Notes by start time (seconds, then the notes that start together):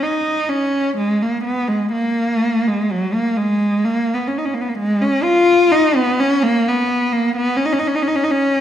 0.03 D#4
0.49 C#4
0.97 G#3
1.22 A#3
1.44 B3
1.68 G#3
1.92 A#3
2.67 G#3
2.91 F#3
3.13 A#3
3.37 G#3
3.84 A#3
4.14 B3
4.28 C#4
4.38 D#4
4.45 C#4
4.54 A#3
4.61 B3
4.68 A#3
4.78 G#3
5.02 C#4
5.23 F4
5.72 D#4
5.96 B3
6.20 C#4
6.43 A#3
6.67 B3
7.13 A#3
7.36 B3
7.56 C#4
7.65 D#4
7.73 C#4
7.79 D#4
7.87 C#4
7.95 D#4
8.02 C#4
8.08 D#4
8.16 C#4
8.24 D#4
8.31 C#4